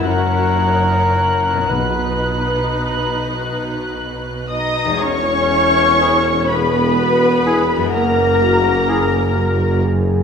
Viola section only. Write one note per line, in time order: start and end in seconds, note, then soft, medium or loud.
0.07 0.59 F#4 medium
0.59 1.14 D#4 medium
1.14 1.71 C#4 soft
1.70 4.23 D#4 medium
4.51 4.99 D#4 medium
5.03 6.49 C#4 medium
6.50 7.94 B3 medium
7.95 9.80 A#3 medium